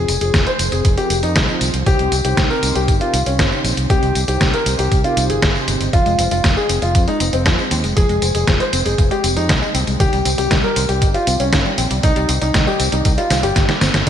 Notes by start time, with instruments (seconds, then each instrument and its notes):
Already playing: grand piano G#4
0.09 fingered electric bass F1, closed hi-hat, tambourine
0.21 fingered electric bass F1, analog polysynth F3 C4 F4 G#4 C5, grand piano G#4, closed hi-hat, tambourine
0.34 fingered electric bass F1, kick, snare, closed hi-hat, tambourine
0.47 grand piano C5, closed hi-hat, tambourine
0.59 fingered electric bass F1, analog polysynth F3 C4 F4 G#4 C5, closed hi-hat, tambourine
0.72 fingered electric bass F1, grand piano G#4, closed hi-hat, tambourine
0.85 fingered electric bass F1, kick, closed hi-hat, tambourine
0.97 analog polysynth F3 C4 F4 G#4 A#4, grand piano G4, closed hi-hat, tambourine
1.10 fingered electric bass F1, closed hi-hat, tambourine
1.23 fingered electric bass F2, grand piano D#4, closed hi-hat, tambourine
1.36 fingered electric bass C2, analog polysynth F3 C4 F4 G#4 C5, kick, snare, closed hi-hat, tambourine
1.48 tambourine
1.61 fingered electric bass C2, closed hi-hat, tambourine
1.74 fingered electric bass C2, closed hi-hat, tambourine
1.86 fingered electric bass C2, analog polysynth C3 C4 D#4 G4 C5, grand piano G4, kick, closed hi-hat, tambourine
1.99 fingered electric bass C2, closed hi-hat, tambourine
2.12 fingered electric bass C2, closed hi-hat, tambourine
2.25 fingered electric bass C2, analog polysynth C3 C4 D#4 G4 C5, grand piano G4, closed hi-hat, tambourine
2.37 fingered electric bass C2, kick, snare, closed hi-hat, tambourine
2.50 grand piano A#4, tambourine
2.63 fingered electric bass C2, analog polysynth C3 C4 D#4 G4 C5, closed hi-hat, tambourine
2.75 fingered electric bass C2, grand piano G4, closed hi-hat, tambourine
2.88 fingered electric bass G1, kick, closed hi-hat, tambourine
3.01 analog polysynth C3 C4 D#4 G4 A#4, grand piano F4, closed hi-hat, tambourine
3.14 fingered electric bass C2, closed hi-hat, tambourine
3.26 fingered electric bass C2, grand piano C#4, closed hi-hat, tambourine
3.39 fingered electric bass G1, analog polysynth C3 C4 D#4 G4 C5, kick, snare, closed hi-hat, tambourine
3.52 tambourine
3.64 fingered electric bass A#1, closed hi-hat, tambourine
3.77 fingered electric bass C2, closed hi-hat, tambourine
3.90 fingered electric bass C2, analog polysynth C3 C4 D#4 G4 C5, grand piano G4, kick, closed hi-hat, tambourine
4.03 fingered electric bass C2, closed hi-hat, tambourine
4.15 fingered electric bass C2, closed hi-hat, tambourine
4.28 fingered electric bass C2, analog polysynth C3 C4 D#4 G4 C5, grand piano G4, closed hi-hat, tambourine
4.41 fingered electric bass C2, kick, snare, closed hi-hat, tambourine
4.54 grand piano A#4, closed hi-hat, tambourine
4.66 fingered electric bass C2, analog polysynth C3 C4 D#4 G4 C5, closed hi-hat, tambourine
4.79 fingered electric bass C2, grand piano G4, closed hi-hat, tambourine
4.92 fingered electric bass C2, kick, closed hi-hat, tambourine
5.04 analog polysynth C3 C4 D#4 G4 A#4, grand piano F4, closed hi-hat, tambourine
5.17 fingered electric bass C2, analog polysynth C3 C4 D#4 G4 C5, closed hi-hat, tambourine
5.30 fingered electric bass G1, grand piano G#4, closed hi-hat, tambourine
5.42 fingered electric bass G1, kick, snare, closed hi-hat, tambourine
5.55 analog polysynth C3 C4 D#4 G4 C5, tambourine
5.68 fingered electric bass G1, closed hi-hat, tambourine
5.80 fingered electric bass G1, closed hi-hat, tambourine
5.93 fingered electric bass F1, synth arpeggio sound F3, grand piano F4, kick, closed hi-hat, tambourine
6.06 fingered electric bass F1, synth arpeggio sound G#3, closed hi-hat, tambourine
6.19 fingered electric bass F1, synth arpeggio sound C4, closed hi-hat, tambourine
6.31 fingered electric bass F1, synth arpeggio sound G#3, grand piano F4, closed hi-hat, tambourine
6.44 fingered electric bass F1, synth arpeggio sound F3, kick, snare, closed hi-hat, tambourine
6.57 synth arpeggio sound G#3, grand piano G#4, tambourine
6.69 fingered electric bass F1, synth arpeggio sound C4, closed hi-hat, tambourine
6.82 fingered electric bass F1, synth arpeggio sound G#3, grand piano F4, closed hi-hat, tambourine
6.95 fingered electric bass F2, synth arpeggio sound F3, kick, closed hi-hat, tambourine
7.08 synth arpeggio sound G#3, grand piano D#4, closed hi-hat, tambourine
7.20 fingered electric bass F1, synth arpeggio sound C4, closed hi-hat, tambourine
7.33 fingered electric bass F1, synth arpeggio sound G#3, grand piano C4, closed hi-hat, tambourine
7.46 fingered electric bass F2, synth arpeggio sound F3, kick, snare, closed hi-hat, tambourine
7.58 synth arpeggio sound G#3, tambourine
7.71 fingered electric bass D#2, synth arpeggio sound C4, closed hi-hat, tambourine
7.84 fingered electric bass F1, synth arpeggio sound G#3, closed hi-hat, tambourine
7.97 fingered electric bass F1, synth arpeggio sound F3, grand piano G#4, kick, closed hi-hat, tambourine
8.09 fingered electric bass F1, synth arpeggio sound G#3, closed hi-hat, tambourine
8.22 fingered electric bass F1, synth arpeggio sound C4, closed hi-hat, tambourine
8.35 fingered electric bass F1, synth arpeggio sound G#3, grand piano G#4, closed hi-hat, tambourine
8.47 fingered electric bass F1, synth arpeggio sound F3, kick, snare, closed hi-hat, tambourine
8.60 synth arpeggio sound G#3, grand piano C5, closed hi-hat, tambourine
8.73 fingered electric bass F1, synth arpeggio sound C4, closed hi-hat, tambourine
8.85 fingered electric bass F1, synth arpeggio sound G#3, grand piano G#4, closed hi-hat, tambourine
8.98 fingered electric bass F1, synth arpeggio sound F3, kick, closed hi-hat, tambourine
9.11 synth arpeggio sound G#3, grand piano G4, closed hi-hat, tambourine
9.24 fingered electric bass F1, synth arpeggio sound C4, closed hi-hat, tambourine
9.36 fingered electric bass F2, synth arpeggio sound G#3, grand piano D#4, closed hi-hat, tambourine
9.49 fingered electric bass C2, synth arpeggio sound F3, kick, snare, closed hi-hat, tambourine
9.62 synth arpeggio sound G#3, tambourine
9.75 fingered electric bass C2, synth arpeggio sound C4, closed hi-hat, tambourine
9.87 fingered electric bass C2, synth arpeggio sound G#3, closed hi-hat, tambourine
10.00 fingered electric bass C2, synth arpeggio sound D#3, grand piano G4, kick, closed hi-hat, tambourine
10.13 fingered electric bass C2, synth arpeggio sound G3, closed hi-hat, tambourine
10.25 fingered electric bass C2, synth arpeggio sound C4, closed hi-hat, tambourine
10.38 fingered electric bass C2, synth arpeggio sound G3, grand piano G4, closed hi-hat, tambourine
10.51 fingered electric bass C2, synth arpeggio sound D#3, kick, snare, closed hi-hat, tambourine
10.64 synth arpeggio sound G3, grand piano A#4, tambourine
10.76 fingered electric bass C2, synth arpeggio sound C4, closed hi-hat, tambourine
10.89 fingered electric bass C2, synth arpeggio sound G3, grand piano G4, closed hi-hat, tambourine
11.02 fingered electric bass G1, synth arpeggio sound D#3, kick, closed hi-hat, tambourine
11.14 synth arpeggio sound G3, grand piano F4, closed hi-hat, tambourine
11.27 fingered electric bass C2, synth arpeggio sound C4, closed hi-hat, tambourine
11.40 fingered electric bass C2, synth arpeggio sound G3, grand piano C#4, closed hi-hat, tambourine
11.53 fingered electric bass G1, synth arpeggio sound D#3, kick, snare, closed hi-hat, tambourine
11.65 synth arpeggio sound G3, tambourine
11.78 fingered electric bass A#1, synth arpeggio sound C4, closed hi-hat, tambourine
11.91 fingered electric bass C2, synth arpeggio sound G3, closed hi-hat, tambourine
12.03 fingered electric bass C2, synth arpeggio sound D#3, grand piano D#4, kick, closed hi-hat, tambourine
12.16 fingered electric bass C2, synth arpeggio sound G3, closed hi-hat, tambourine
12.29 fingered electric bass C2, synth arpeggio sound C4, closed hi-hat, tambourine
12.41 fingered electric bass C2, synth arpeggio sound G3, grand piano D#4, closed hi-hat, tambourine
12.54 fingered electric bass C2, synth arpeggio sound D#3, kick, snare, closed hi-hat, tambourine
12.67 synth arpeggio sound G3, grand piano G4, tambourine
12.80 fingered electric bass C2, synth arpeggio sound C4, closed hi-hat, tambourine
12.92 fingered electric bass C2, synth arpeggio sound G3, grand piano D#4, closed hi-hat, tambourine
13.05 fingered electric bass C2, synth arpeggio sound D#3, kick, closed hi-hat, tambourine
13.18 synth arpeggio sound G3, grand piano F4, closed hi-hat, tambourine
13.30 fingered electric bass C2, synth arpeggio sound C4, snare, closed hi-hat, tambourine
13.43 fingered electric bass G1, synth arpeggio sound G3, grand piano G4, closed hi-hat, tambourine
13.56 fingered electric bass G1, synth arpeggio sound D#3, kick, snare, closed hi-hat, tambourine
13.69 synth arpeggio sound G3, snare, closed hi-hat, tambourine
13.81 fingered electric bass G1, synth arpeggio sound C4, snare, closed hi-hat, tambourine
13.94 fingered electric bass G1, synth arpeggio sound G3, snare, closed hi-hat, tambourine